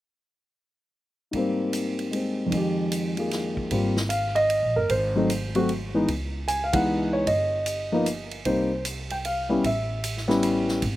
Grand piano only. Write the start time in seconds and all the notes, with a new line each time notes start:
1.31 G#2 G3 A#3
1.37 C4
2.11 G#3 C4
2.46 F2
2.50 D#3 G#3
2.57 G4
3.17 F3 A#3 G#4
3.71 G3 A#3 C4 F4
4.09 F5
4.35 D#5
4.76 A#4
4.90 C5
5.16 F#3 A3 C4 D#4
5.55 F#3 A3 C4 F#4
5.94 E3 G#3 B3 D#4
6.48 G#5
6.64 F5
6.73 E3 G#3 B3 D#4 F#5
7.13 C#5
7.27 D#5
7.92 F3 A#3 B3 D#4
8.46 G3 A#3 C4 D#4 C5
9.12 G5
9.25 F5
9.49 G3 B3 C#4 E4
9.66 E5
10.28 G3 B3 C#4 E4